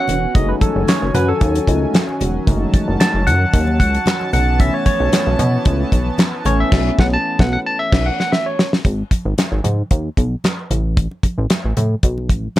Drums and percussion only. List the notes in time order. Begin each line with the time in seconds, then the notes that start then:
0.08 closed hi-hat, low conga
0.35 kick, closed hi-hat, muted conga, low conga
0.61 kick, closed hi-hat, high conga
0.88 snare, clap, closed hi-hat, muted conga, high conga
1.15 closed hi-hat, high conga, low conga
1.41 kick, closed hi-hat, muted conga
1.55 closed hi-hat, muted conga
1.67 kick, closed hi-hat, high conga
1.94 snare, clap, closed hi-hat, high conga
2.09 muted conga
2.20 closed hi-hat, low conga
2.47 kick, closed hi-hat, muted conga, low conga
2.74 kick, closed hi-hat, high conga
3.00 snare, clap, closed hi-hat, high conga
3.27 closed hi-hat, high conga, low conga
3.53 kick, closed hi-hat, muted conga
3.67 muted conga
3.80 kick, closed hi-hat, high conga
3.94 closed hi-hat
4.06 snare, clap, closed hi-hat, muted conga, high conga
4.21 muted conga
4.33 closed hi-hat, low conga
4.60 kick, closed hi-hat, low conga
4.86 kick, closed hi-hat, high conga
5.12 snare, clap, closed hi-hat, muted conga, high conga
5.39 closed hi-hat, high conga, low conga
5.65 kick, closed hi-hat
5.92 kick, closed hi-hat, high conga
6.18 snare, clap, closed hi-hat, muted conga, high conga
6.45 closed hi-hat, low conga
6.72 kick, snare, crash
6.99 kick, snare
7.39 kick, snare
7.92 kick, snare, crash
8.20 snare
8.33 snare
8.59 snare
8.73 snare
8.85 kick, closed hi-hat, muted conga
9.11 kick, closed hi-hat, high conga
9.38 snare, clap, closed hi-hat, high conga
9.65 closed hi-hat, high conga, low conga
9.91 kick, closed hi-hat, muted conga
10.17 kick, closed hi-hat, high conga
10.44 snare, clap, closed hi-hat, muted conga, high conga
10.70 closed hi-hat, low conga
10.97 kick, closed hi-hat
11.11 muted conga
11.23 kick, closed hi-hat, high conga
11.50 snare, clap, closed hi-hat, high conga
11.77 closed hi-hat, high conga, low conga
12.03 kick, closed hi-hat, muted conga
12.18 muted conga
12.29 kick, closed hi-hat, high conga
12.56 closed hi-hat, muted conga, high conga